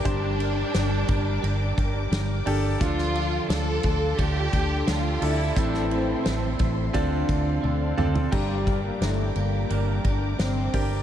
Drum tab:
CC |----------------|----------------|----------------|x---------------|
RD |x-x-x-x-x-x-x-x-|x-x-x-x-x-x-x-x-|x-x-x-x-x-x-----|--x-x-x-x-x-x-x-|
HH |p-------------o-|p-------------o-|p---------------|--------------o-|
SD |----o-------o---|-o--o-------o---|-o--o-----------|----o-------o---|
T1 |----------------|----------------|------------o---|----------------|
T2 |----------------|----------------|--------------o-|----------------|
FT |----------------|----------------|---------------o|----------------|
BD |o-----o---o-----|o-----o-o-o-----|o-----o-o-o-----|o-o-------o---o-|